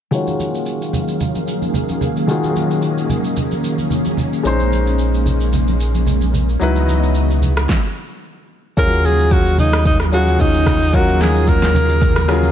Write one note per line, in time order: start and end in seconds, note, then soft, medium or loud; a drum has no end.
0.11 2.24 D#3 medium
0.11 4.41 D#3 medium
0.11 4.41 F#3 medium
0.11 2.24 G#3 medium
0.11 6.57 A#3 medium
0.11 6.57 C#4 medium
0.11 2.25 F4 medium
0.11 2.25 F#4 medium
0.11 4.41 G#4 medium
0.11 2.26 C#5 medium
0.11 4.41 F5 medium
0.11 shaker medium
0.27 high conga medium
0.27 shaker soft
0.39 high conga medium
0.39 shaker loud
0.54 shaker soft
0.66 shaker medium
0.82 shaker soft
0.93 high conga medium
0.93 low conga medium
0.93 shaker medium
1.08 shaker medium
1.20 low conga medium
1.20 shaker medium
1.35 high conga medium
1.35 shaker soft
1.48 shaker medium
1.62 high conga medium
1.62 shaker soft
1.74 low conga medium
1.74 shaker medium
1.89 high conga medium
1.89 shaker medium
2.01 low conga medium
2.01 shaker medium
2.17 shaker soft
2.27 4.40 D#3 medium
2.27 4.40 G#3 medium
2.27 4.41 F4 medium
2.27 4.41 F#4 medium
2.27 4.42 G#4 medium
2.27 shaker medium
2.43 high conga medium
2.43 shaker soft
2.56 high conga medium
2.56 shaker loud
2.71 shaker soft
2.82 shaker medium
2.98 shaker soft
3.09 high conga medium
3.09 low conga medium
3.09 shaker medium
3.24 shaker medium
3.36 low conga medium
3.36 shaker medium
3.51 high conga medium
3.51 shaker soft
3.64 shaker medium
3.78 high conga medium
3.78 shaker soft
3.90 low conga medium
3.90 shaker medium
4.05 high conga medium
4.05 shaker medium
4.17 low conga medium
4.17 shaker medium
4.33 shaker soft
4.43 6.57 A#1 medium
4.43 6.56 G#3 medium
4.43 6.59 G#3 medium
4.43 6.57 C#4 medium
4.43 6.57 D#4 medium
4.43 6.58 C5 medium
4.43 shaker medium
4.60 high conga medium
4.60 shaker soft
4.72 high conga medium
4.72 shaker loud
4.87 shaker soft
4.98 shaker medium
5.14 shaker soft
5.26 high conga medium
5.26 low conga medium
5.26 shaker medium
5.40 shaker medium
5.53 low conga medium
5.53 shaker medium
5.68 high conga medium
5.68 shaker soft
5.80 shaker medium
5.94 high conga medium
5.94 shaker medium
6.06 low conga medium
6.06 shaker medium
6.21 high conga medium
6.21 shaker medium
6.34 low conga medium
6.34 shaker medium
6.49 shaker soft
6.59 7.67 C#2 medium
6.59 7.68 C#3 medium
6.59 7.68 E3 medium
6.59 7.66 F#3 medium
6.59 7.68 G#3 medium
6.59 7.68 B3 medium
6.59 7.67 D#4 medium
6.59 7.67 E4 medium
6.59 7.68 F#4 medium
6.59 7.68 B4 medium
6.59 7.68 D#5 medium
6.59 shaker medium
6.76 high conga medium
6.76 shaker soft
6.88 high conga medium
6.88 shaker loud
7.03 shaker soft
7.15 shaker medium
7.30 shaker soft
7.42 high conga medium
7.42 low conga medium
7.42 shaker medium
7.57 cross-stick loud
7.57 shaker medium
7.69 kick loud
7.69 snare medium
8.77 12.52 D#2 medium
8.77 12.52 C#3 medium
8.77 12.52 D#3 medium
8.77 8.84 F3 medium
8.77 12.52 F#3 medium
8.77 12.52 A#3 medium
8.77 9.64 C#4 medium
8.77 12.52 F4 medium
8.77 9.65 F4 medium
8.77 12.52 G#4 medium
8.77 9.65 G#4 medium
8.77 9.07 A#4 loud
8.77 kick loud
8.77 shaker medium
8.83 9.67 F#3 medium
8.92 shaker soft
9.04 9.34 G#4 loud
9.04 high conga medium
9.04 shaker loud
9.19 shaker soft
9.31 9.59 F#4 medium
9.31 kick medium
9.31 shaker medium
9.47 shaker soft
9.58 9.84 D#4 medium
9.58 high conga medium
9.58 low conga medium
9.58 shaker medium
9.73 cross-stick loud
9.73 shaker medium
9.85 9.98 D#4 medium
9.85 kick loud
9.85 low conga medium
9.85 shaker medium
10.00 cross-stick medium
10.00 high conga medium
10.00 shaker soft
10.12 10.78 F#3 medium
10.12 10.78 C#4 medium
10.12 10.79 F4 medium
10.12 10.42 F#4 medium
10.12 10.79 G#4 medium
10.12 shaker medium
10.27 high conga medium
10.27 shaker soft
10.39 10.96 D#4 loud
10.39 kick medium
10.39 low conga medium
10.39 shaker medium
10.54 high conga medium
10.54 shaker medium
10.66 kick loud
10.66 cross-stick medium
10.66 low conga medium
10.66 shaker medium
10.82 shaker soft
10.93 11.80 F#3 medium
10.93 11.81 C#4 medium
10.93 11.81 F4 medium
10.93 11.23 F#4 medium
10.93 11.81 A#4 medium
10.93 kick loud
10.93 shaker medium
11.08 shaker soft
11.21 11.50 G#4 medium
11.21 snare medium
11.21 high conga medium
11.21 shaker loud
11.36 shaker soft
11.47 12.52 A#4 medium
11.47 kick medium
11.47 shaker medium
11.62 snare medium
11.62 shaker soft
11.74 high conga medium
11.74 low conga medium
11.74 shaker medium
11.89 shaker medium
12.01 kick loud
12.01 low conga medium
12.01 shaker medium
12.16 cross-stick medium
12.16 high conga medium
12.16 shaker soft
12.28 12.52 F#3 medium
12.28 12.52 C#4 medium
12.28 12.52 F4 medium
12.28 12.52 G#4 loud
12.28 cross-stick loud
12.28 shaker medium
12.43 high conga medium
12.43 shaker medium